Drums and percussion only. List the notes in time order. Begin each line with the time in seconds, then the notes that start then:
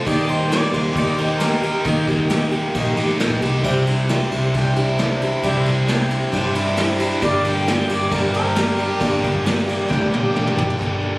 0.07 kick, ride
0.28 ride
0.41 snare
0.52 snare, ride
0.64 snare
0.74 ride
0.96 kick, ride
1.18 ride
1.40 snare, ride
1.63 ride
1.85 kick, ride
2.08 kick, ride
2.19 kick
2.30 snare, ride
2.52 ride
2.75 kick, ride
2.97 ride
3.10 snare
3.20 snare, ride
3.31 kick
3.42 ride
3.64 kick, crash
3.87 ride
4.09 snare, ride
4.32 ride
4.54 kick, ride
4.76 ride
4.98 snare, ride
5.21 ride
5.43 kick, ride
5.65 ride
5.88 snare, ride
6.10 ride
6.33 kick, ride
6.55 ride
6.67 snare
6.77 snare, ride
7.00 ride
7.22 kick, ride
7.44 ride
7.57 snare
7.67 snare, ride
7.89 ride
8.11 kick, ride
8.34 ride
8.56 snare, ride
8.78 ride
9.01 kick, ride
9.24 kick, ride
9.35 kick
9.46 snare, ride
9.59 snare
9.69 ride
9.91 kick, snare
10.14 high tom
10.36 mid tom
10.47 mid tom
10.58 floor tom
10.70 floor tom
10.81 kick, closed hi-hat